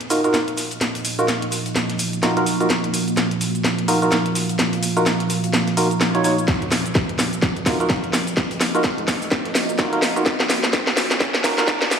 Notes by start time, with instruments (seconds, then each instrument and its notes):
Already playing: ambient pad A#3 F4 F#4 D#5
0.01 closed hi-hat
0.10 synth stab D#4 F4 F#4 A#4, open hi-hat, shaker
0.24 synth stab D#4 F4 F#4 A#4, closed hi-hat, shaker
0.34 snare, closed hi-hat, shaker
0.48 closed hi-hat
0.57 snare, open hi-hat, shaker
0.71 closed hi-hat, shaker
0.81 snare, closed hi-hat, shaker
0.95 closed hi-hat
1.04 open hi-hat, shaker
1.19 synth stab D#4 F4 F#4 A#4, closed hi-hat, shaker
1.28 snare, closed hi-hat, shaker
1.42 closed hi-hat
1.52 open hi-hat, shaker
1.66 closed hi-hat, shaker
1.76 snare, closed hi-hat, shaker
1.90 snare, closed hi-hat
1.99 open hi-hat, shaker
2.13 closed hi-hat, shaker
2.23 synth stab D#4 F4 F#4 A#4, snare, closed hi-hat, shaker
2.37 synth stab D#4 F4 F#4 A#4, closed hi-hat
2.46 open hi-hat, shaker
2.60 synth stab D#4 F4 F#4 A#4, closed hi-hat, shaker
2.70 ambient pad F5, snare, closed hi-hat, shaker
2.84 closed hi-hat
2.94 open hi-hat, shaker
3.08 closed hi-hat, shaker
3.16 snare, closed hi-hat, shaker
3.31 closed hi-hat
3.41 open hi-hat, shaker
3.55 closed hi-hat, shaker
3.64 snare, closed hi-hat, shaker
3.79 closed hi-hat
3.88 synth stab D#4 F4 F#4 A#4, open hi-hat, shaker
4.02 synth stab D#4 F4 F#4 A#4, closed hi-hat, shaker
4.11 snare, closed hi-hat, shaker
4.26 closed hi-hat
4.35 snare, open hi-hat, shaker
4.49 closed hi-hat, shaker
4.59 snare, closed hi-hat, shaker
4.73 closed hi-hat
4.83 open hi-hat, shaker
4.97 synth stab D#4 F4 F#4 A#4, closed hi-hat, shaker
5.06 snare, closed hi-hat, shaker
5.20 closed hi-hat
5.30 open hi-hat, shaker
5.44 closed hi-hat, shaker
5.54 snare, closed hi-hat, shaker
5.67 snare, closed hi-hat
5.77 synth stab D#4 F4 F#4 A#4, open hi-hat, shaker
5.91 closed hi-hat, shaker
6.01 snare, closed hi-hat, shaker
6.15 synth stab D#4 F4 F#4 C#5, closed hi-hat
6.24 synth stab D#4 F4 F#4 C#5, open hi-hat, shaker
6.38 closed hi-hat, shaker
6.48 ambient pad D#5, kick, snare, closed hi-hat, riser, shaker
6.62 closed hi-hat
6.71 snare, open hi-hat, shaker
6.86 closed hi-hat, shaker
6.95 kick, snare, closed hi-hat, shaker
7.09 closed hi-hat
7.18 snare, open hi-hat, shaker
7.33 closed hi-hat, shaker
7.42 kick, snare, closed hi-hat, shaker
7.56 closed hi-hat
7.66 synth stab D#4 F4 F#4 A#4, kick, snare, open hi-hat, shaker
7.80 synth stab D#4 F4 F#4 A#4, closed hi-hat, shaker
7.90 kick, snare, closed hi-hat, shaker
8.04 closed hi-hat
8.13 snare, open hi-hat, shaker
8.27 closed hi-hat, shaker
8.37 kick, snare, closed hi-hat, shaker
8.51 closed hi-hat
8.61 snare, open hi-hat, shaker
8.75 synth stab D#4 F4 F#4 A#4, closed hi-hat, shaker
8.83 kick, snare, closed hi-hat, shaker
8.98 closed hi-hat
9.08 kick, snare, open hi-hat, shaker
9.22 closed hi-hat, shaker
9.31 kick, snare, closed hi-hat, shaker
9.45 snare, closed hi-hat
9.55 snare, open hi-hat, shaker
9.69 closed hi-hat, shaker
9.78 synth stab D#4 F4 F#4 A#4, kick, snare, closed hi-hat, shaker
9.93 synth stab D#4 F4 F#4 A#4, closed hi-hat
10.02 snare, open hi-hat, shaker
10.16 synth stab D#4 F4 F#4 A#4, closed hi-hat, shaker
10.26 ambient pad G#5, kick, snare, closed hi-hat, shaker
10.40 snare, closed hi-hat
10.49 snare, open hi-hat, shaker
10.64 snare, shaker
10.73 kick, snare, closed hi-hat, shaker
10.87 snare, closed hi-hat
10.97 snare, open hi-hat, shaker
11.11 snare, closed hi-hat, shaker
11.20 kick, snare, closed hi-hat, shaker
11.34 snare, closed hi-hat
11.44 synth stab D#4 F4 F#4 A#4, kick, snare, open hi-hat, shaker
11.58 synth stab D#4 F4 F#4 A#4, snare, closed hi-hat, shaker
11.68 kick, snare, closed hi-hat, shaker
11.82 snare, closed hi-hat
11.91 snare, open hi-hat, shaker